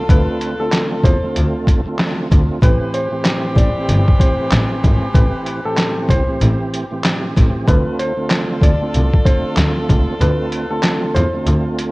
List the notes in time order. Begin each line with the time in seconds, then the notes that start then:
Already playing: D4 F4 A4
0.08 D2 D3 A3 C4 F4 B4, kick, closed hi-hat
0.41 closed hi-hat
0.59 D3 A3 C4 F4 A4
0.72 snare, clap, closed hi-hat
1.04 E2 C5, kick, closed hi-hat
1.23 D3 A3 C4 F4
1.36 D2, closed hi-hat
1.67 kick, closed hi-hat
1.86 D3 A3 C4 F4
1.96 D3 A3 C4 F4, snare, clap, closed hi-hat
2.28 D2 D3 A3 C4 F4, kick, closed hi-hat
2.61 A1 A2 E3 C4 G4 B4, kick, closed hi-hat
2.94 C5, closed hi-hat
3.11 A2 E3 C4 G4
3.25 snare, clap, closed hi-hat
3.56 A1 D5, kick, closed hi-hat
3.77 A2 E3 C4 G4
3.89 G1, closed hi-hat
4.08 kick
4.19 A2 E3 C4 G4 C5, kick, closed hi-hat
4.52 A1, snare, clap, closed hi-hat
4.84 G#1, kick, closed hi-hat
5.13 A1 A2 E3 C4 G4 B4, kick, closed hi-hat
5.47 closed hi-hat
5.65 A2 E3 C4 G4 A4
5.78 snare, clap, closed hi-hat
6.09 C2 C5, kick, closed hi-hat
6.26 A2 E3 C4 G4
6.41 A1, closed hi-hat
6.74 closed hi-hat
6.91 A2 E3 C4 G4
7.03 A2 E3 C4 G4, snare, clap, closed hi-hat
7.35 A1 A2 E3 C4 G4, kick, snare, closed hi-hat
7.66 D2 D3 A3 C4 D4 F4 A4 B4, kick, closed hi-hat
7.99 C5, closed hi-hat
8.16 D3 A3 C4 F4
8.30 snare, clap, closed hi-hat
8.62 D2 D5, kick, closed hi-hat
8.80 D3 A3 C4 F4
8.94 C2, closed hi-hat
9.13 kick
9.24 D3 A3 C4 F4 C5, kick, closed hi-hat
9.57 D2, snare, clap, closed hi-hat
9.89 C#2, kick, closed hi-hat
10.18 D2 D3 A3 C4 F4 B4, closed hi-hat
10.52 closed hi-hat
10.70 D3 A3 C4 F4 A4
10.83 snare, clap, closed hi-hat
11.14 E2 C5, closed hi-hat
11.34 D3 A3 C4 F4
11.47 D2, closed hi-hat
11.79 closed hi-hat